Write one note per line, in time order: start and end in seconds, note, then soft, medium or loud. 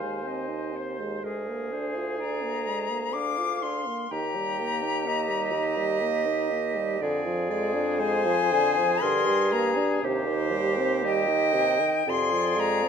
0.00 1.20 D#2 medium
0.00 0.26 G#3 medium
0.00 1.21 C5 medium
0.00 0.29 F5 medium
0.00 0.75 G#5 medium
0.25 0.50 C4 medium
0.25 0.78 D#5 medium
0.48 0.74 D#4 medium
0.73 1.00 C4 medium
0.73 1.26 C5 medium
0.99 1.22 G#3 medium
1.22 3.82 D2 medium
1.22 1.50 G#3 medium
1.22 3.83 G#4 medium
1.22 1.75 A#4 medium
1.49 1.73 A#3 medium
1.72 1.97 D4 medium
1.72 2.20 C5 medium
1.95 2.21 F4 medium
2.20 2.45 D4 medium
2.20 2.89 D5 medium
2.20 3.14 A#5 loud
2.44 2.68 A#3 medium
2.66 2.91 G#3 medium
2.90 3.16 A#3 medium
3.13 3.39 D4 medium
3.13 4.08 F5 medium
3.13 3.64 D6 loud
3.38 3.64 F4 medium
3.62 3.88 D4 medium
3.62 4.12 C6 loud
3.87 4.11 A#3 medium
4.11 6.98 D#2 medium
4.11 4.36 D#3 medium
4.11 6.98 G4 medium
4.11 5.09 G5 medium
4.11 6.53 A#5 loud
4.35 4.61 G3 medium
4.59 4.85 A#3 medium
4.83 5.08 D#4 medium
5.06 5.30 A#3 medium
5.06 7.03 D#5 loud
5.29 5.54 G3 medium
5.53 5.79 D#3 medium
5.77 6.03 G3 medium
6.01 6.28 A#3 medium
6.26 6.52 D#4 medium
6.51 6.77 A#3 medium
6.76 6.99 G3 medium
7.00 8.99 F2 loud
7.00 7.28 D3 medium
7.00 10.05 G#4 loud
7.00 7.50 D5 medium
7.26 7.51 F3 medium
7.50 7.76 G#3 medium
7.50 8.01 D5 loud
7.75 8.01 D4 loud
7.99 8.27 G#3 medium
7.99 9.04 C5 loud
7.99 9.04 G#5 loud
8.25 8.54 F3 loud
8.52 8.79 D3 loud
8.78 9.01 F3 medium
9.01 10.01 G2 loud
9.01 9.27 D3 loud
9.01 9.77 A#4 loud
9.01 9.53 C6 loud
9.26 9.54 G3 medium
9.52 9.78 A#3 medium
9.52 10.03 A#5 loud
9.77 10.01 D4 medium
10.02 11.78 D#2 loud
10.02 10.28 C3 medium
10.02 11.82 G4 loud
10.02 11.06 C5 loud
10.27 10.53 D#3 medium
10.51 10.79 G3 loud
10.77 11.05 C4 loud
11.03 11.29 G3 loud
11.03 12.07 D#5 loud
11.03 12.10 G5 loud
11.28 11.55 D#3 loud
11.54 11.81 C3 loud
11.79 12.06 D#3 medium
12.06 12.88 F2 loud
12.06 12.33 C3 loud
12.06 12.88 G#4 medium
12.06 12.88 D5 loud
12.06 12.61 C6 loud
12.31 12.58 F3 medium
12.57 12.85 G#3 medium
12.57 12.88 A#5 loud
12.83 12.88 C4 medium